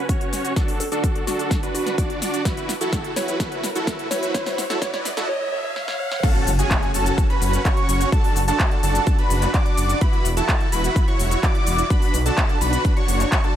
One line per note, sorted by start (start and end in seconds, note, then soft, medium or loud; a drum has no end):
0.00 riser medium
0.09 0.54 C#4 loud
0.09 0.54 F#4 medium
0.09 0.54 C#5 loud
0.09 kick loud
0.09 closed hi-hat loud
0.09 shaker soft
0.21 closed hi-hat soft
0.33 snare medium
0.33 open hi-hat loud
0.33 shaker medium
0.45 closed hi-hat soft
0.45 shaker soft
0.56 0.84 D4 loud
0.56 0.84 F#4 medium
0.56 0.84 A4 loud
0.56 kick loud
0.56 snare medium
0.56 closed hi-hat medium
0.56 shaker soft
0.68 open hi-hat medium
0.68 shaker soft
0.80 0.88 A4 medium
0.80 open hi-hat loud
0.80 shaker medium
0.92 1.25 D4 medium
0.92 1.25 F#4 medium
0.92 0.99 A4 medium
0.92 1.25 A4 loud
0.92 closed hi-hat soft
0.92 shaker soft
1.04 kick loud
1.04 closed hi-hat medium
1.04 shaker soft
1.16 closed hi-hat soft
1.27 1.60 D4 medium
1.27 1.40 F#4 loud
1.27 1.60 F#4 medium
1.27 1.60 A4 loud
1.27 snare medium
1.27 open hi-hat loud
1.27 shaker medium
1.39 closed hi-hat soft
1.39 shaker soft
1.51 kick loud
1.51 snare medium
1.51 closed hi-hat medium
1.51 shaker soft
1.63 1.95 D4 medium
1.63 1.95 F#4 medium
1.63 1.95 B4 medium
1.63 closed hi-hat soft
1.63 shaker soft
1.75 2.10 F#4 medium
1.75 open hi-hat loud
1.75 shaker medium
1.87 snare medium
1.87 closed hi-hat soft
1.87 shaker soft
1.98 2.43 D4 loud
1.98 2.43 F#4 medium
1.98 2.43 D5 loud
1.98 kick loud
1.98 closed hi-hat medium
1.98 shaker soft
2.10 closed hi-hat soft
2.22 snare medium
2.22 open hi-hat loud
2.22 shaker medium
2.34 closed hi-hat soft
2.34 shaker soft
2.45 2.73 E4 medium
2.45 2.73 F#4 medium
2.45 2.73 B4 loud
2.45 kick loud
2.45 snare medium
2.45 closed hi-hat medium
2.45 shaker soft
2.57 closed hi-hat soft
2.57 shaker soft
2.69 snare medium
2.69 open hi-hat loud
2.69 shaker medium
2.81 3.14 E4 medium
2.81 3.14 F#4 medium
2.81 3.14 A4 loud
2.81 closed hi-hat soft
2.81 shaker soft
2.93 kick loud
2.93 snare medium
2.93 closed hi-hat medium
2.93 shaker soft
3.04 closed hi-hat soft
3.16 3.38 E4 medium
3.16 3.38 F#4 medium
3.16 3.38 B4 medium
3.16 3.24 C#5 medium
3.16 snare medium
3.16 open hi-hat loud
3.16 shaker medium
3.28 3.36 C#5 medium
3.28 closed hi-hat soft
3.28 shaker soft
3.40 3.68 E4 medium
3.40 3.68 F#4 medium
3.40 3.68 B4 loud
3.40 kick loud
3.40 snare medium
3.40 closed hi-hat medium
3.40 shaker soft
3.52 closed hi-hat soft
3.64 snare medium
3.64 open hi-hat loud
3.64 shaker medium
3.75 4.08 E4 medium
3.75 4.08 F#4 medium
3.75 4.08 A4 loud
3.75 closed hi-hat soft
3.75 shaker soft
3.87 kick loud
3.87 snare medium
3.87 closed hi-hat medium
3.87 shaker soft
3.99 closed hi-hat soft
4.11 4.33 E4 medium
4.11 4.33 F#4 medium
4.11 4.33 B4 medium
4.11 4.18 C#5 medium
4.11 snare medium
4.11 open hi-hat loud
4.11 shaker medium
4.23 4.30 C#5 medium
4.23 closed hi-hat soft
4.23 shaker soft
4.34 4.62 E4 medium
4.34 4.62 F#4 medium
4.34 4.62 B4 loud
4.34 4.42 C#5 medium
4.34 kick loud
4.34 snare medium
4.34 closed hi-hat medium
4.34 shaker soft
4.46 4.54 C#5 medium
4.46 snare medium
4.46 open hi-hat medium
4.46 shaker soft
4.58 snare medium
4.58 open hi-hat loud
4.58 shaker medium
4.70 4.80 E4 medium
4.70 4.80 F#4 medium
4.70 4.80 A4 loud
4.70 snare medium
4.70 closed hi-hat soft
4.70 shaker soft
4.82 5.09 E4 medium
4.82 5.09 F#4 medium
4.82 5.09 B4 loud
4.82 4.89 C#5 medium
4.82 kick loud
4.82 snare loud
4.82 closed hi-hat medium
4.82 shaker soft
4.94 5.01 C#5 medium
4.94 snare medium
4.94 closed hi-hat soft
5.05 snare loud
5.05 open hi-hat loud
5.05 shaker medium
5.17 5.27 E4 medium
5.17 5.27 F#4 medium
5.17 5.27 A4 loud
5.17 snare medium
5.17 closed hi-hat soft
5.17 shaker soft
5.29 5.37 C#5 medium
5.41 5.48 C#5 medium
5.52 5.60 C#5 medium
5.64 5.72 C#5 medium
5.76 5.84 C#5 medium
5.76 snare medium
5.88 5.96 C#5 medium
5.88 snare medium
6.00 6.07 C#5 loud
6.12 6.19 C#5 medium
6.12 snare medium
6.23 6.51 C#4 loud
6.23 6.51 F#4 medium
6.23 6.51 A4 loud
6.23 6.51 A5 loud
6.23 kick loud
6.23 closed hi-hat medium
6.23 crash loud
6.23 impact medium
6.23 shaker soft
6.35 closed hi-hat soft
6.47 6.64 F#1 loud
6.47 open hi-hat loud
6.47 shaker medium
6.59 6.92 C#4 medium
6.59 6.92 F#4 medium
6.59 6.92 G#4 loud
6.59 6.92 G#5 loud
6.59 closed hi-hat medium
6.59 shaker soft
6.71 kick loud
6.71 clap loud
6.71 closed hi-hat medium
6.71 shaker soft
6.83 closed hi-hat soft
6.94 7.11 F#1 medium
6.94 7.27 C#4 medium
6.94 7.27 F#4 medium
6.94 7.27 A4 loud
6.94 7.27 A5 loud
6.94 open hi-hat loud
6.94 shaker medium
7.06 closed hi-hat medium
7.06 shaker soft
7.18 kick loud
7.18 closed hi-hat medium
7.18 shaker soft
7.30 7.62 C#4 medium
7.30 7.62 F#4 medium
7.30 7.62 B4 medium
7.30 7.62 B5 medium
7.30 closed hi-hat soft
7.42 7.58 F#1 loud
7.42 open hi-hat loud
7.42 shaker medium
7.53 closed hi-hat medium
7.53 shaker soft
7.65 8.10 C#4 loud
7.65 8.10 F#4 medium
7.65 8.10 C#5 loud
7.65 8.10 C#6 loud
7.65 kick loud
7.65 clap loud
7.65 closed hi-hat medium
7.65 shaker soft
7.77 closed hi-hat soft
7.89 8.05 F#1 medium
7.89 open hi-hat loud
7.89 shaker medium
8.01 closed hi-hat medium
8.01 shaker soft
8.12 8.40 D4 loud
8.12 8.40 F#4 medium
8.12 8.40 A4 loud
8.12 8.40 A5 loud
8.12 kick loud
8.12 closed hi-hat medium
8.12 shaker soft
8.24 open hi-hat medium
8.36 8.53 F#1 medium
8.36 open hi-hat loud
8.36 shaker medium
8.48 8.80 D4 medium
8.48 8.80 F#4 medium
8.48 8.80 A4 loud
8.48 8.80 A5 loud
8.48 closed hi-hat medium
8.48 shaker soft
8.60 kick loud
8.60 clap loud
8.60 closed hi-hat medium
8.60 shaker soft
8.71 closed hi-hat soft
8.83 9.00 F#1 medium
8.83 9.16 D4 medium
8.83 9.16 F#4 medium
8.83 9.16 A4 loud
8.83 9.16 A5 loud
8.83 open hi-hat loud
8.83 shaker medium
8.95 closed hi-hat medium
8.95 shaker soft
9.07 kick loud
9.07 closed hi-hat medium
9.07 shaker soft
9.19 9.51 D4 medium
9.19 9.51 F#4 medium
9.19 9.51 B4 medium
9.19 9.51 B5 medium
9.19 closed hi-hat soft
9.30 9.47 F#1 loud
9.30 open hi-hat loud
9.30 shaker medium
9.42 clap soft
9.42 closed hi-hat medium
9.42 shaker soft
9.54 9.99 D4 loud
9.54 9.99 F#4 medium
9.54 9.99 D5 loud
9.54 9.99 D6 loud
9.54 kick loud
9.54 clap loud
9.54 closed hi-hat medium
9.54 shaker soft
9.66 closed hi-hat soft
9.77 9.94 F#1 medium
9.77 open hi-hat loud
9.77 shaker medium
9.89 closed hi-hat medium
9.89 shaker soft
10.01 10.29 E4 loud
10.01 10.29 F#4 medium
10.01 10.29 B4 loud
10.01 10.29 B5 loud
10.01 kick loud
10.01 closed hi-hat medium
10.01 shaker soft
10.13 closed hi-hat soft
10.25 10.42 E1 loud
10.25 open hi-hat loud
10.25 shaker medium
10.37 10.69 E4 loud
10.37 10.69 F#4 medium
10.37 10.69 A4 loud
10.37 10.69 A5 loud
10.37 closed hi-hat medium
10.37 shaker soft
10.49 kick loud
10.49 clap loud
10.49 closed hi-hat medium
10.49 shaker soft
10.61 closed hi-hat soft
10.72 10.89 E1 medium
10.72 11.05 E4 medium
10.72 11.05 F#4 medium
10.72 11.05 B4 medium
10.72 11.05 B5 loud
10.72 open hi-hat loud
10.72 shaker medium
10.84 closed hi-hat medium
10.84 shaker soft
10.96 kick loud
10.96 closed hi-hat medium
10.96 shaker soft
11.08 11.40 E4 medium
11.08 11.40 F#4 medium
11.08 11.40 C#5 medium
11.08 11.40 C#6 medium
11.08 closed hi-hat soft
11.20 11.36 E1 loud
11.20 open hi-hat loud
11.20 shaker medium
11.31 closed hi-hat soft
11.31 shaker soft
11.43 11.88 E4 loud
11.43 11.88 F#4 medium
11.43 11.88 D5 loud
11.43 11.88 D6 loud
11.43 kick loud
11.43 clap loud
11.43 closed hi-hat medium
11.43 shaker soft
11.55 closed hi-hat soft
11.67 11.83 E1 medium
11.67 open hi-hat loud
11.67 shaker medium
11.78 closed hi-hat soft
11.78 shaker soft
11.90 12.18 D4 loud
11.90 12.18 F#4 medium
11.90 12.18 B4 loud
11.90 12.18 B5 loud
11.90 kick loud
11.90 closed hi-hat medium
11.90 shaker soft
12.02 open hi-hat medium
12.14 12.31 B1 loud
12.14 open hi-hat loud
12.14 shaker medium
12.26 12.58 D4 medium
12.26 12.58 F#4 medium
12.26 12.58 A4 loud
12.26 12.58 A5 loud
12.26 closed hi-hat medium
12.26 shaker soft
12.38 kick loud
12.38 clap loud
12.38 closed hi-hat medium
12.38 shaker soft
12.49 closed hi-hat soft
12.61 12.78 B1 loud
12.61 12.94 D4 medium
12.61 12.94 F#4 medium
12.61 12.94 B4 loud
12.61 12.94 B5 loud
12.61 open hi-hat loud
12.61 shaker medium
12.73 closed hi-hat soft
12.73 shaker soft
12.85 kick loud
12.85 closed hi-hat soft
12.85 shaker soft
12.97 13.29 D4 medium
12.97 13.29 F#4 medium
12.97 13.29 C#5 medium
12.97 13.29 C#6 medium
12.97 closed hi-hat soft
13.08 13.25 F#1 loud
13.08 open hi-hat loud
13.08 shaker medium
13.20 clap soft
13.20 closed hi-hat soft
13.20 shaker soft
13.32 13.41 D4 loud
13.32 13.41 F#4 medium
13.32 13.41 C#5 loud
13.32 13.41 C#6 loud
13.32 kick loud
13.32 clap loud
13.32 closed hi-hat soft
13.32 shaker soft
13.44 13.53 D4 medium
13.44 13.53 F#4 medium
13.44 13.53 A4 loud
13.44 13.53 A5 medium
13.44 closed hi-hat soft